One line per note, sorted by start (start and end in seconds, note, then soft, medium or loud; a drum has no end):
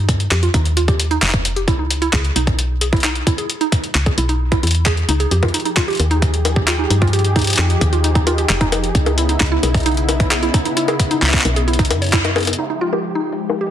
0.00 0.27 G2 medium
0.09 kick loud
0.09 closed hi-hat medium
0.20 closed hi-hat soft
0.31 0.49 F2 medium
0.31 0.36 G4 medium
0.31 clap loud
0.31 closed hi-hat medium
0.43 0.50 F4 medium
0.43 closed hi-hat soft
0.54 1.18 D#2 loud
0.54 0.61 D#4 medium
0.54 kick loud
0.54 closed hi-hat medium
0.65 closed hi-hat soft
0.77 0.84 F4 medium
0.77 closed hi-hat medium
0.88 0.99 G4 medium
0.88 kick loud
0.88 closed hi-hat soft
1.00 closed hi-hat loud
1.11 1.18 D#4 loud
1.11 closed hi-hat soft
1.22 1.69 F1 medium
1.22 clap loud
1.22 closed hi-hat medium
1.26 clap medium
1.30 kick loud
1.30 clap medium
1.30 closed hi-hat soft
1.45 closed hi-hat medium
1.56 1.61 G4 medium
1.56 closed hi-hat soft
1.68 2.09 C#2 medium
1.68 1.75 E4 medium
1.68 kick loud
1.68 closed hi-hat medium
1.79 1.86 D#4 medium
1.90 closed hi-hat medium
2.02 2.09 E4 loud
2.02 closed hi-hat soft
2.13 2.30 C#2 medium
2.13 2.24 G#4 medium
2.13 kick loud
2.13 clap loud
2.13 closed hi-hat medium
2.25 closed hi-hat soft
2.36 3.22 B1 loud
2.36 2.43 D#4 medium
2.36 closed hi-hat medium
2.47 kick loud
2.47 closed hi-hat soft
2.59 closed hi-hat medium
2.81 2.86 G#4 medium
2.81 closed hi-hat medium
2.93 3.00 E4 medium
2.93 kick loud
2.93 closed hi-hat soft
2.96 closed hi-hat soft
3.00 3.11 D#4 medium
3.00 clap loud
3.00 closed hi-hat soft
3.04 closed hi-hat medium
3.15 closed hi-hat soft
3.27 3.34 E4 loud
3.27 kick loud
3.27 closed hi-hat medium
3.38 3.49 G#4 medium
3.38 closed hi-hat soft
3.50 closed hi-hat medium
3.61 3.68 D#4 medium
3.61 closed hi-hat soft
3.72 kick loud
3.72 closed hi-hat medium
3.84 closed hi-hat soft
3.95 4.12 C#2 medium
3.95 clap loud
3.95 closed hi-hat medium
4.06 4.11 G#4 medium
4.06 kick loud
4.06 closed hi-hat soft
4.18 4.63 B1 medium
4.18 4.25 E4 medium
4.18 closed hi-hat medium
4.29 4.36 D#4 medium
4.29 closed hi-hat soft
4.52 4.59 E4 loud
4.52 kick loud
4.52 closed hi-hat soft
4.63 5.04 E2 medium
4.63 4.67 E4 medium
4.63 closed hi-hat soft
4.67 closed hi-hat medium
4.71 closed hi-hat medium
4.75 closed hi-hat soft
4.86 4.93 G#4 loud
4.86 kick loud
4.86 clap loud
4.86 closed hi-hat medium
4.97 closed hi-hat soft
5.09 5.26 C#2 medium
5.09 5.13 D#4 loud
5.09 closed hi-hat medium
5.20 5.31 G#4 medium
5.20 closed hi-hat soft
5.31 5.49 F2 loud
5.31 8.91 F3 medium
5.31 12.55 D#4 medium
5.31 5.36 G4 medium
5.31 8.91 G4 medium
5.31 8.91 G#4 medium
5.31 closed hi-hat medium
5.43 5.50 F4 medium
5.43 kick loud
5.43 closed hi-hat soft
5.43 high bongo medium
5.48 closed hi-hat soft
5.54 5.61 D#4 medium
5.54 closed hi-hat medium
5.60 closed hi-hat soft
5.65 5.70 D#4 medium
5.65 closed hi-hat soft
5.77 5.84 F4 loud
5.77 kick loud
5.77 clap loud
5.77 closed hi-hat medium
5.88 5.99 G4 medium
5.88 closed hi-hat soft
5.90 closed hi-hat soft
5.93 closed hi-hat soft
5.95 closed hi-hat soft
5.97 6.86 D#2 loud
5.97 closed hi-hat soft
6.00 closed hi-hat medium
6.00 high bongo soft
6.11 6.18 D#4 loud
6.11 closed hi-hat soft
6.22 kick loud
6.22 closed hi-hat medium
6.34 closed hi-hat soft
6.45 closed hi-hat medium
6.45 high bongo soft
6.56 6.61 G4 medium
6.56 kick loud
6.68 6.75 F4 medium
6.68 clap loud
6.68 closed hi-hat medium
6.79 6.86 D#4 medium
6.90 7.54 G2 medium
6.90 6.95 D#4 medium
6.90 closed hi-hat medium
7.02 7.09 F4 loud
7.02 kick loud
7.02 closed hi-hat soft
7.07 closed hi-hat soft
7.13 7.24 G4 medium
7.13 closed hi-hat medium
7.19 closed hi-hat soft
7.25 closed hi-hat soft
7.36 7.43 D#4 loud
7.36 kick loud
7.36 closed hi-hat soft
7.39 closed hi-hat soft
7.42 closed hi-hat soft
7.44 closed hi-hat medium
7.47 closed hi-hat medium
7.50 closed hi-hat medium
7.53 closed hi-hat medium
7.56 7.76 F2 medium
7.56 clap loud
7.56 closed hi-hat medium
7.70 closed hi-hat soft
7.81 8.45 D#2 loud
7.81 7.86 G4 medium
7.81 kick medium
7.81 closed hi-hat medium
7.93 8.00 F4 medium
7.93 closed hi-hat soft
8.04 8.11 D#4 medium
8.04 closed hi-hat medium
8.15 8.20 D#4 medium
8.15 kick loud
8.15 closed hi-hat soft
8.27 8.34 F4 loud
8.27 closed hi-hat medium
8.27 high bongo medium
8.38 8.49 G4 medium
8.38 closed hi-hat soft
8.49 8.91 F1 medium
8.49 clap loud
8.49 closed hi-hat medium
8.61 8.68 D#4 loud
8.61 kick loud
8.61 closed hi-hat soft
8.72 closed hi-hat medium
8.72 high bongo medium
8.84 closed hi-hat soft
8.95 9.36 C#2 medium
8.95 12.55 C#3 medium
8.95 12.55 B3 medium
8.95 12.55 E4 medium
8.95 kick loud
8.95 closed hi-hat medium
9.06 9.11 G#4 medium
9.06 closed hi-hat soft
9.06 high bongo medium
9.18 9.25 E4 medium
9.18 closed hi-hat medium
9.29 9.36 D#4 medium
9.29 closed hi-hat soft
9.40 9.58 C#2 loud
9.40 9.45 D#4 medium
9.40 kick loud
9.40 clap loud
9.40 closed hi-hat medium
9.46 closed hi-hat soft
9.52 9.59 E4 loud
9.63 10.50 B1 loud
9.63 9.74 G#4 medium
9.63 closed hi-hat medium
9.63 high bongo soft
9.74 kick loud
9.74 closed hi-hat soft
9.77 closed hi-hat soft
9.80 closed hi-hat soft
9.83 9.93 D#4 loud
9.83 closed hi-hat soft
9.86 closed hi-hat medium
9.89 closed hi-hat soft
9.92 closed hi-hat soft
9.94 closed hi-hat soft
9.97 closed hi-hat soft
10.09 closed hi-hat medium
10.09 high bongo medium
10.20 kick medium
10.20 closed hi-hat soft
10.31 10.36 G#4 medium
10.31 clap loud
10.31 closed hi-hat medium
10.43 10.50 E4 medium
10.43 closed hi-hat soft
10.54 10.61 D#4 medium
10.54 kick loud
10.54 closed hi-hat medium
10.65 10.70 D#4 medium
10.65 closed hi-hat soft
10.77 10.84 E4 loud
10.77 closed hi-hat medium
10.88 10.99 G#4 medium
10.88 closed hi-hat soft
10.88 high bongo medium
11.00 kick medium
11.00 closed hi-hat loud
11.11 11.18 D#4 loud
11.11 closed hi-hat soft
11.22 11.40 C#2 medium
11.22 clap medium
11.22 closed hi-hat medium
11.26 clap medium
11.30 kick loud
11.30 clap medium
11.34 clap medium
11.34 closed hi-hat soft
11.37 clap medium
11.41 11.92 B1 loud
11.41 clap loud
11.41 closed hi-hat medium
11.41 high bongo soft
11.56 11.61 G#4 medium
11.56 closed hi-hat soft
11.68 11.75 E4 medium
11.68 closed hi-hat soft
11.73 closed hi-hat soft
11.79 11.86 D#4 medium
11.79 kick loud
11.79 closed hi-hat soft
11.85 closed hi-hat medium
11.90 12.54 F#2 medium
11.90 closed hi-hat medium
11.90 high bongo medium
12.02 12.13 C#5 medium
12.02 closed hi-hat soft
12.04 closed hi-hat soft
12.06 closed hi-hat soft
12.09 closed hi-hat soft
12.11 12.17 E4 loud
12.11 kick loud
12.11 clap loud
12.11 closed hi-hat soft
12.13 closed hi-hat medium
12.24 12.32 D#5 medium
12.24 closed hi-hat soft
12.24 high bongo soft
12.36 12.43 G#4 medium
12.36 closed hi-hat soft
12.36 high bongo medium
12.38 closed hi-hat soft
12.40 closed hi-hat soft
12.43 closed hi-hat soft
12.45 closed hi-hat soft
12.47 closed hi-hat medium
12.47 high bongo soft
12.53 closed hi-hat medium
12.59 13.71 F3 medium
12.59 13.71 G#3 medium
12.59 13.71 D#4 medium
12.59 12.66 D#4 medium
12.59 13.71 G4 medium
12.59 closed hi-hat medium
12.59 crash medium
12.70 12.74 D#4 medium
12.70 closed hi-hat soft
12.81 12.89 F4 loud
12.81 closed hi-hat medium
12.93 13.03 G4 medium
12.93 closed hi-hat soft
12.93 high bongo soft
13.04 closed hi-hat medium
13.15 13.23 D#4 medium
13.15 closed hi-hat soft
13.32 closed hi-hat medium
13.38 closed hi-hat soft
13.50 closed hi-hat soft
13.50 high bongo medium
13.52 closed hi-hat soft
13.55 closed hi-hat soft
13.58 13.65 G4 medium
13.58 closed hi-hat soft
13.61 closed hi-hat soft
13.64 closed hi-hat soft
13.67 closed hi-hat medium